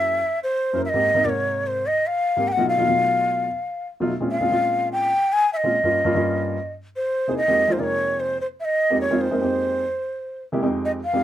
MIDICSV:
0, 0, Header, 1, 3, 480
1, 0, Start_track
1, 0, Key_signature, -4, "minor"
1, 0, Tempo, 407886
1, 993, Time_signature, 4, 2, 24, 8
1, 13221, End_track
2, 0, Start_track
2, 0, Title_t, "Bansuri"
2, 0, Program_c, 0, 73
2, 0, Note_on_c, 0, 76, 111
2, 467, Note_off_c, 0, 76, 0
2, 510, Note_on_c, 0, 72, 90
2, 958, Note_off_c, 0, 72, 0
2, 1002, Note_on_c, 0, 76, 90
2, 1049, Note_on_c, 0, 75, 98
2, 1061, Note_off_c, 0, 76, 0
2, 1469, Note_on_c, 0, 74, 82
2, 1487, Note_off_c, 0, 75, 0
2, 1521, Note_on_c, 0, 73, 89
2, 1532, Note_off_c, 0, 74, 0
2, 1966, Note_on_c, 0, 72, 93
2, 1983, Note_off_c, 0, 73, 0
2, 2196, Note_on_c, 0, 75, 86
2, 2214, Note_off_c, 0, 72, 0
2, 2434, Note_on_c, 0, 77, 101
2, 2451, Note_off_c, 0, 75, 0
2, 2918, Note_on_c, 0, 79, 95
2, 2936, Note_off_c, 0, 77, 0
2, 2968, Note_on_c, 0, 78, 103
2, 2980, Note_off_c, 0, 79, 0
2, 3157, Note_off_c, 0, 78, 0
2, 3165, Note_on_c, 0, 77, 101
2, 4556, Note_off_c, 0, 77, 0
2, 5072, Note_on_c, 0, 77, 103
2, 5749, Note_off_c, 0, 77, 0
2, 5799, Note_on_c, 0, 79, 105
2, 6269, Note_on_c, 0, 80, 100
2, 6287, Note_off_c, 0, 79, 0
2, 6502, Note_off_c, 0, 80, 0
2, 6509, Note_on_c, 0, 76, 93
2, 6553, Note_on_c, 0, 75, 101
2, 6564, Note_off_c, 0, 76, 0
2, 7908, Note_off_c, 0, 75, 0
2, 8193, Note_on_c, 0, 72, 92
2, 8643, Note_off_c, 0, 72, 0
2, 8679, Note_on_c, 0, 75, 98
2, 9087, Note_on_c, 0, 72, 59
2, 9105, Note_off_c, 0, 75, 0
2, 9172, Note_on_c, 0, 74, 82
2, 9189, Note_off_c, 0, 72, 0
2, 9220, Note_on_c, 0, 73, 89
2, 9232, Note_off_c, 0, 74, 0
2, 9650, Note_on_c, 0, 72, 91
2, 9668, Note_off_c, 0, 73, 0
2, 9885, Note_off_c, 0, 72, 0
2, 9897, Note_on_c, 0, 72, 80
2, 9967, Note_off_c, 0, 72, 0
2, 10123, Note_on_c, 0, 76, 82
2, 10179, Note_on_c, 0, 75, 89
2, 10191, Note_off_c, 0, 76, 0
2, 10568, Note_off_c, 0, 75, 0
2, 10604, Note_on_c, 0, 73, 85
2, 10840, Note_on_c, 0, 72, 94
2, 10857, Note_off_c, 0, 73, 0
2, 12276, Note_off_c, 0, 72, 0
2, 12770, Note_on_c, 0, 75, 87
2, 12841, Note_off_c, 0, 75, 0
2, 12996, Note_on_c, 0, 77, 97
2, 13221, Note_off_c, 0, 77, 0
2, 13221, End_track
3, 0, Start_track
3, 0, Title_t, "Grand piano"
3, 0, Program_c, 1, 0
3, 0, Note_on_c, 1, 42, 65
3, 0, Note_on_c, 1, 58, 59
3, 0, Note_on_c, 1, 61, 56
3, 0, Note_on_c, 1, 64, 61
3, 0, Note_on_c, 1, 68, 71
3, 218, Note_off_c, 1, 42, 0
3, 220, Note_off_c, 1, 58, 0
3, 223, Note_off_c, 1, 61, 0
3, 226, Note_off_c, 1, 64, 0
3, 226, Note_off_c, 1, 68, 0
3, 862, Note_on_c, 1, 42, 71
3, 866, Note_on_c, 1, 58, 61
3, 870, Note_on_c, 1, 61, 64
3, 879, Note_on_c, 1, 64, 63
3, 879, Note_on_c, 1, 70, 78
3, 988, Note_off_c, 1, 42, 0
3, 989, Note_off_c, 1, 58, 0
3, 992, Note_off_c, 1, 61, 0
3, 996, Note_off_c, 1, 64, 0
3, 996, Note_off_c, 1, 70, 0
3, 1103, Note_on_c, 1, 44, 75
3, 1107, Note_on_c, 1, 58, 70
3, 1116, Note_on_c, 1, 60, 71
3, 1120, Note_on_c, 1, 67, 82
3, 1276, Note_off_c, 1, 44, 0
3, 1278, Note_off_c, 1, 58, 0
3, 1283, Note_off_c, 1, 60, 0
3, 1285, Note_off_c, 1, 67, 0
3, 1344, Note_on_c, 1, 44, 73
3, 1349, Note_on_c, 1, 58, 67
3, 1356, Note_on_c, 1, 60, 69
3, 1363, Note_on_c, 1, 63, 83
3, 1433, Note_off_c, 1, 44, 0
3, 1435, Note_off_c, 1, 58, 0
3, 1439, Note_off_c, 1, 60, 0
3, 1442, Note_off_c, 1, 63, 0
3, 1466, Note_on_c, 1, 44, 68
3, 1473, Note_on_c, 1, 58, 65
3, 1476, Note_on_c, 1, 48, 61
3, 1482, Note_on_c, 1, 70, 75
3, 2143, Note_off_c, 1, 44, 0
3, 2146, Note_off_c, 1, 58, 0
3, 2148, Note_off_c, 1, 48, 0
3, 2151, Note_off_c, 1, 70, 0
3, 2785, Note_on_c, 1, 44, 69
3, 2795, Note_on_c, 1, 58, 68
3, 2800, Note_on_c, 1, 60, 65
3, 2805, Note_on_c, 1, 67, 77
3, 2911, Note_off_c, 1, 44, 0
3, 2916, Note_off_c, 1, 58, 0
3, 2918, Note_off_c, 1, 60, 0
3, 2920, Note_off_c, 1, 67, 0
3, 3026, Note_on_c, 1, 47, 74
3, 3033, Note_on_c, 1, 54, 65
3, 3036, Note_on_c, 1, 57, 66
3, 3040, Note_on_c, 1, 63, 70
3, 3045, Note_on_c, 1, 65, 82
3, 3199, Note_off_c, 1, 47, 0
3, 3203, Note_off_c, 1, 54, 0
3, 3204, Note_off_c, 1, 57, 0
3, 3206, Note_off_c, 1, 63, 0
3, 3209, Note_off_c, 1, 65, 0
3, 3264, Note_on_c, 1, 47, 72
3, 3268, Note_on_c, 1, 54, 69
3, 3272, Note_on_c, 1, 57, 66
3, 3276, Note_on_c, 1, 63, 67
3, 3280, Note_on_c, 1, 65, 82
3, 3354, Note_off_c, 1, 47, 0
3, 3356, Note_off_c, 1, 54, 0
3, 3358, Note_off_c, 1, 57, 0
3, 3360, Note_off_c, 1, 63, 0
3, 3362, Note_off_c, 1, 65, 0
3, 3387, Note_on_c, 1, 47, 70
3, 3388, Note_on_c, 1, 54, 56
3, 3394, Note_on_c, 1, 57, 57
3, 3395, Note_on_c, 1, 63, 59
3, 3402, Note_on_c, 1, 65, 74
3, 4065, Note_off_c, 1, 47, 0
3, 4065, Note_off_c, 1, 54, 0
3, 4068, Note_off_c, 1, 57, 0
3, 4069, Note_off_c, 1, 63, 0
3, 4072, Note_off_c, 1, 65, 0
3, 4711, Note_on_c, 1, 47, 80
3, 4712, Note_on_c, 1, 54, 74
3, 4718, Note_on_c, 1, 57, 76
3, 4720, Note_on_c, 1, 63, 75
3, 4726, Note_on_c, 1, 65, 89
3, 4835, Note_off_c, 1, 47, 0
3, 4836, Note_off_c, 1, 54, 0
3, 4838, Note_off_c, 1, 57, 0
3, 4839, Note_off_c, 1, 63, 0
3, 4843, Note_off_c, 1, 65, 0
3, 4947, Note_on_c, 1, 46, 72
3, 4952, Note_on_c, 1, 56, 69
3, 4956, Note_on_c, 1, 60, 67
3, 4961, Note_on_c, 1, 61, 71
3, 4965, Note_on_c, 1, 65, 78
3, 5121, Note_off_c, 1, 46, 0
3, 5123, Note_off_c, 1, 56, 0
3, 5126, Note_off_c, 1, 60, 0
3, 5128, Note_off_c, 1, 61, 0
3, 5130, Note_off_c, 1, 65, 0
3, 5186, Note_on_c, 1, 46, 72
3, 5187, Note_on_c, 1, 56, 68
3, 5192, Note_on_c, 1, 60, 66
3, 5197, Note_on_c, 1, 61, 63
3, 5204, Note_on_c, 1, 65, 82
3, 5276, Note_off_c, 1, 46, 0
3, 5277, Note_off_c, 1, 56, 0
3, 5279, Note_off_c, 1, 60, 0
3, 5282, Note_off_c, 1, 61, 0
3, 5285, Note_off_c, 1, 65, 0
3, 5310, Note_on_c, 1, 46, 65
3, 5315, Note_on_c, 1, 56, 65
3, 5318, Note_on_c, 1, 60, 58
3, 5319, Note_on_c, 1, 61, 60
3, 5326, Note_on_c, 1, 65, 73
3, 5987, Note_off_c, 1, 46, 0
3, 5990, Note_off_c, 1, 56, 0
3, 5991, Note_off_c, 1, 60, 0
3, 5992, Note_off_c, 1, 61, 0
3, 5995, Note_off_c, 1, 65, 0
3, 6632, Note_on_c, 1, 46, 70
3, 6636, Note_on_c, 1, 56, 65
3, 6642, Note_on_c, 1, 60, 65
3, 6644, Note_on_c, 1, 61, 64
3, 6651, Note_on_c, 1, 65, 78
3, 6756, Note_off_c, 1, 46, 0
3, 6758, Note_off_c, 1, 56, 0
3, 6761, Note_off_c, 1, 60, 0
3, 6762, Note_off_c, 1, 61, 0
3, 6766, Note_off_c, 1, 65, 0
3, 6868, Note_on_c, 1, 43, 73
3, 6874, Note_on_c, 1, 58, 67
3, 6882, Note_on_c, 1, 61, 70
3, 6885, Note_on_c, 1, 65, 82
3, 7042, Note_off_c, 1, 43, 0
3, 7045, Note_off_c, 1, 58, 0
3, 7049, Note_off_c, 1, 61, 0
3, 7051, Note_off_c, 1, 65, 0
3, 7116, Note_on_c, 1, 43, 87
3, 7120, Note_on_c, 1, 58, 82
3, 7127, Note_on_c, 1, 61, 77
3, 7132, Note_on_c, 1, 65, 96
3, 7202, Note_off_c, 1, 43, 0
3, 7205, Note_off_c, 1, 58, 0
3, 7208, Note_off_c, 1, 61, 0
3, 7210, Note_off_c, 1, 65, 0
3, 7236, Note_on_c, 1, 43, 80
3, 7241, Note_on_c, 1, 58, 74
3, 7247, Note_on_c, 1, 61, 75
3, 7254, Note_on_c, 1, 65, 89
3, 7719, Note_off_c, 1, 43, 0
3, 7721, Note_off_c, 1, 58, 0
3, 7724, Note_off_c, 1, 61, 0
3, 7727, Note_off_c, 1, 65, 0
3, 8562, Note_on_c, 1, 48, 70
3, 8565, Note_on_c, 1, 58, 65
3, 8570, Note_on_c, 1, 63, 65
3, 8572, Note_on_c, 1, 64, 63
3, 8578, Note_on_c, 1, 68, 78
3, 8681, Note_off_c, 1, 48, 0
3, 8683, Note_off_c, 1, 58, 0
3, 8685, Note_off_c, 1, 63, 0
3, 8687, Note_off_c, 1, 64, 0
3, 8690, Note_off_c, 1, 68, 0
3, 8798, Note_on_c, 1, 41, 75
3, 8803, Note_on_c, 1, 56, 70
3, 8806, Note_on_c, 1, 58, 70
3, 8810, Note_on_c, 1, 60, 69
3, 8811, Note_on_c, 1, 63, 66
3, 8814, Note_on_c, 1, 67, 82
3, 8967, Note_off_c, 1, 41, 0
3, 8970, Note_off_c, 1, 56, 0
3, 8971, Note_off_c, 1, 58, 0
3, 8974, Note_off_c, 1, 60, 0
3, 8974, Note_off_c, 1, 63, 0
3, 8975, Note_off_c, 1, 67, 0
3, 9036, Note_on_c, 1, 41, 73
3, 9040, Note_on_c, 1, 56, 66
3, 9042, Note_on_c, 1, 58, 66
3, 9047, Note_on_c, 1, 60, 67
3, 9048, Note_on_c, 1, 63, 71
3, 9054, Note_on_c, 1, 65, 81
3, 9122, Note_off_c, 1, 41, 0
3, 9124, Note_off_c, 1, 56, 0
3, 9125, Note_off_c, 1, 58, 0
3, 9128, Note_off_c, 1, 60, 0
3, 9128, Note_off_c, 1, 63, 0
3, 9131, Note_off_c, 1, 65, 0
3, 9151, Note_on_c, 1, 41, 71
3, 9156, Note_on_c, 1, 56, 60
3, 9159, Note_on_c, 1, 58, 61
3, 9164, Note_on_c, 1, 48, 65
3, 9166, Note_on_c, 1, 63, 64
3, 9169, Note_on_c, 1, 70, 73
3, 9827, Note_off_c, 1, 41, 0
3, 9830, Note_off_c, 1, 56, 0
3, 9831, Note_off_c, 1, 58, 0
3, 9834, Note_off_c, 1, 48, 0
3, 9835, Note_off_c, 1, 63, 0
3, 9836, Note_off_c, 1, 70, 0
3, 10476, Note_on_c, 1, 41, 70
3, 10477, Note_on_c, 1, 56, 61
3, 10482, Note_on_c, 1, 58, 68
3, 10485, Note_on_c, 1, 60, 65
3, 10488, Note_on_c, 1, 63, 66
3, 10490, Note_on_c, 1, 67, 78
3, 10645, Note_off_c, 1, 41, 0
3, 10646, Note_off_c, 1, 56, 0
3, 10648, Note_off_c, 1, 58, 0
3, 10650, Note_off_c, 1, 60, 0
3, 10651, Note_off_c, 1, 63, 0
3, 10652, Note_off_c, 1, 67, 0
3, 10714, Note_on_c, 1, 41, 76
3, 10716, Note_on_c, 1, 56, 71
3, 10717, Note_on_c, 1, 58, 71
3, 10723, Note_on_c, 1, 60, 70
3, 10727, Note_on_c, 1, 63, 72
3, 10730, Note_on_c, 1, 65, 83
3, 10884, Note_off_c, 1, 41, 0
3, 10885, Note_off_c, 1, 56, 0
3, 10886, Note_off_c, 1, 58, 0
3, 10888, Note_off_c, 1, 60, 0
3, 10891, Note_off_c, 1, 63, 0
3, 10892, Note_off_c, 1, 65, 0
3, 10952, Note_on_c, 1, 41, 70
3, 10955, Note_on_c, 1, 56, 68
3, 10959, Note_on_c, 1, 58, 65
3, 10965, Note_on_c, 1, 60, 63
3, 10966, Note_on_c, 1, 63, 69
3, 10971, Note_on_c, 1, 70, 77
3, 11039, Note_off_c, 1, 41, 0
3, 11040, Note_off_c, 1, 56, 0
3, 11043, Note_off_c, 1, 58, 0
3, 11046, Note_off_c, 1, 60, 0
3, 11046, Note_off_c, 1, 63, 0
3, 11049, Note_off_c, 1, 70, 0
3, 11073, Note_on_c, 1, 41, 65
3, 11077, Note_on_c, 1, 56, 62
3, 11079, Note_on_c, 1, 58, 63
3, 11082, Note_on_c, 1, 60, 60
3, 11087, Note_on_c, 1, 63, 59
3, 11092, Note_on_c, 1, 67, 76
3, 11555, Note_off_c, 1, 41, 0
3, 11557, Note_off_c, 1, 56, 0
3, 11558, Note_off_c, 1, 58, 0
3, 11559, Note_off_c, 1, 60, 0
3, 11562, Note_off_c, 1, 63, 0
3, 11564, Note_off_c, 1, 67, 0
3, 12383, Note_on_c, 1, 48, 87
3, 12387, Note_on_c, 1, 56, 76
3, 12393, Note_on_c, 1, 58, 76
3, 12395, Note_on_c, 1, 64, 76
3, 12400, Note_on_c, 1, 67, 90
3, 12489, Note_off_c, 1, 56, 0
3, 12502, Note_off_c, 1, 67, 0
3, 12502, Note_on_c, 1, 41, 80
3, 12507, Note_on_c, 1, 56, 70
3, 12509, Note_off_c, 1, 48, 0
3, 12511, Note_on_c, 1, 60, 77
3, 12512, Note_on_c, 1, 63, 73
3, 12513, Note_off_c, 1, 58, 0
3, 12515, Note_off_c, 1, 64, 0
3, 12519, Note_on_c, 1, 67, 90
3, 12927, Note_off_c, 1, 41, 0
3, 12930, Note_off_c, 1, 56, 0
3, 12932, Note_off_c, 1, 60, 0
3, 12932, Note_off_c, 1, 63, 0
3, 12936, Note_off_c, 1, 67, 0
3, 13099, Note_on_c, 1, 41, 74
3, 13104, Note_on_c, 1, 56, 68
3, 13107, Note_on_c, 1, 60, 66
3, 13114, Note_on_c, 1, 63, 68
3, 13116, Note_on_c, 1, 67, 75
3, 13221, Note_off_c, 1, 41, 0
3, 13221, Note_off_c, 1, 56, 0
3, 13221, Note_off_c, 1, 60, 0
3, 13221, Note_off_c, 1, 63, 0
3, 13221, Note_off_c, 1, 67, 0
3, 13221, End_track
0, 0, End_of_file